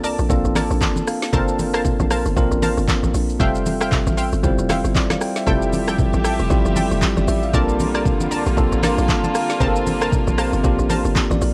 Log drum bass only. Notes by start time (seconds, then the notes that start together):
Already playing: C2
0.19 A#1
0.30 A#1
0.45 A1
0.71 A#1
1.33 G1
2.00 A#1
2.26 G1
2.37 A#1
2.51 A1
2.77 G1
3.03 A1
3.14 A#1
3.40 F1
4.07 A1
4.33 G1
4.44 G1
4.58 F1
4.84 G1
5.47 F1
6.14 A1
6.40 F1
6.50 A1
6.66 G1
6.91 F1
7.17 G1
7.28 A1
7.54 A#1
8.21 C2
8.46 A#1
8.57 A#1
8.72 A1
8.98 A#1
9.61 G1
10.27 A#1
10.53 G1
10.64 A#1
10.79 A1
11.05 G1
11.31 A1
11.42 A#1